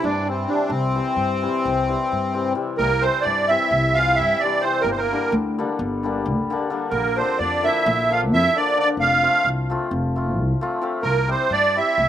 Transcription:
Already playing: hammered dulcimer C3 E3 G3
0.03 upright bass G2, accordion D4, trumpet D5
0.27 hammered dulcimer C3 E3 G3 C4, accordion C4, trumpet C5
0.48 hammered dulcimer C3 E3 G3 C4, accordion D4, trumpet D5
0.70 upright bass C2, accordion C4, trumpet C5
0.94 hammered dulcimer C3 E3 G3 C4
1.16 upright bass G2
1.42 hammered dulcimer C3 E3 G3 C4
1.65 upright bass C2
1.89 hammered dulcimer C3 E3 G3 C4
2.12 upright bass G2
2.34 hammered dulcimer C3 E3 G3 C4
2.55 hammered dulcimer C3 E3 G3 C4
2.76 upright bass C2, trumpet A#3, accordion A#4
3.01 hammered dulcimer C3 E3 G3 C4, trumpet C4, accordion C5
3.22 upright bass G2, trumpet D4, accordion D5
3.47 hammered dulcimer C3 E3 G3 C4, trumpet E4, accordion E5
3.71 upright bass C2
3.94 hammered dulcimer E3, trumpet F4, accordion F5
3.98 hammered dulcimer C3 G3 C4
4.16 upright bass G2, trumpet E4, accordion E5
4.39 hammered dulcimer C3, trumpet D4, accordion D5
4.43 hammered dulcimer E3 G3 C4
4.61 hammered dulcimer C3 E3, accordion C5
4.66 hammered dulcimer G3 C4, trumpet C4
4.81 upright bass G1, accordion A#4
4.87 trumpet A#3
4.91 accordion C5
4.95 trumpet C4, accordion A#4
5.00 trumpet A#3
5.12 hammered dulcimer D3 G3 A#3 D4
5.32 upright bass D2
5.58 hammered dulcimer D3 G3 A#3 D4
5.79 upright bass G1
6.03 hammered dulcimer D3 G3 A#3 D4
6.26 upright bass D2
6.50 hammered dulcimer D3 G3 A#3 D4
6.70 hammered dulcimer D3 G3 A#3 D4
6.90 upright bass A#1, accordion A#4
6.94 trumpet A#3
7.16 hammered dulcimer D3 F3 A#3 D4, trumpet C4, accordion C5
7.39 upright bass F2, trumpet D4, accordion D5
7.62 hammered dulcimer D3 F3 A#3 D4, accordion E5
7.67 trumpet E4
7.86 upright bass A#1
8.10 hammered dulcimer D3 F3 A#3 D4, trumpet F4, accordion F5
8.32 upright bass F2, trumpet E4, accordion E5
8.55 hammered dulcimer D3 F3 A#3 D4, accordion D5
8.59 trumpet D4
8.76 hammered dulcimer D3 F3 A#3 D4, accordion D5
8.81 trumpet D4
8.97 upright bass F1, accordion F5
9.02 trumpet F4
9.23 hammered dulcimer F3 A3 C4 F4
9.45 upright bass C2
9.70 hammered dulcimer F3 A3 C4 F4
9.91 upright bass F1
10.16 hammered dulcimer F3 A3 C4 F4
10.38 upright bass C2
10.61 hammered dulcimer F3 A3 C4 F4
10.81 hammered dulcimer F3 A3 C4 F4
11.03 upright bass C2, trumpet A#3, accordion A#4
11.28 hammered dulcimer G3 C4 E4 G4, trumpet C4, accordion C5
11.50 upright bass G2, trumpet D4, accordion D5
11.75 hammered dulcimer G3 C4 E4 G4, trumpet E4, accordion E5
11.98 upright bass C2

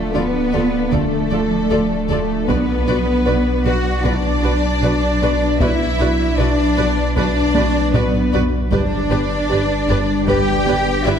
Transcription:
Already playing: sub bass D1, ambient pad F3 D4 A4 D5, cello section A3, grand piano F4 F5, violin section A4
0.14 double bass section D2, cello section B3, synth pluck D4, viola section F4 A4, violin section B4 D5
0.53 double bass section D2, viola section F4 A4, violin section D5
0.92 double bass section D2, synth pluck D3, cello section A3, viola section F4 A4, violin section A4 D5, taiko
1.31 double bass section D2, synth pluck F3, viola section F4 A4, violin section D5
1.70 double bass section D2, viola section F4 A4, violin section D5, grand piano D5
2.09 double bass section D2, cello section A3, viola section F4 A4, violin section A4 D5
2.48 double bass section B1, sub bass B1, ambient pad F#3 D4 B4 D5, synth pluck B3, cello section B3, viola section F#4 B4, violin section B4 D5, taiko
2.87 double bass section B1, synth pluck D4, viola section F#4 B4, violin section D5
3.26 double bass section B1, viola section F#4 B4, synth pluck B4, violin section D5
3.65 double bass section B1, viola section F#4 B4, cello section F#4, violin section D5 F#5
4.04 double bass section B1, synth pluck B3, cello section D4, viola section F#4 B4, violin section D5, taiko
4.43 double bass section B1, synth pluck D4, viola section F#4 B4, violin section D5
4.82 double bass section B1, viola section F#4 B4, violin section D5
5.21 double bass section B1, viola section F#4 B4, violin section D5
5.59 double bass section B1, sub bass B1, ambient pad F#3 D4 B4 D5, synth pluck B3, cello section E4, viola section F#4 B4, violin section D5 E5, grand piano E5, taiko
5.99 double bass section B1, synth pluck D4, viola section F#4 B4, violin section D5
6.38 double bass section B1, cello section D4, viola section F#4 B4, synth pluck B4, violin section D5
6.77 double bass section B1, viola section F#4 B4, violin section D5
7.16 double bass section B1, synth pluck B3, cello section D4, viola section F#4 B4, violin section D5, taiko
7.55 double bass section B1, synth pluck D4, viola section F#4 B4, violin section D5, taiko high
7.93 double bass section B1, cello section B3, viola section F#4 B4, violin section B4 D5, grand piano D5, taiko low-mid
8.33 double bass section B1, viola section F#4 B4, violin section D5, taiko low
8.72 sub bass G1, double bass section G1, ambient pad G3 D4 B4 D5, synth pluck G3, cello section D4, viola section G4 B4, violin section D5, taiko
9.11 double bass section G1, synth pluck B3, viola section G4 B4, violin section D5
9.50 double bass section G1, synth pluck G4, viola section G4 B4, violin section D5
9.89 double bass section G1, viola section G4 B4, violin section D5
10.27 double bass section G1, synth pluck G3, cello section G4, viola section G4 B4, grand piano B4, violin section D5 G5, taiko
10.66 double bass section G1, synth pluck B3, viola section G4 B4, violin section D5
11.05 double bass section G1, cello section E4, viola section G4 B4, violin section D5 E5

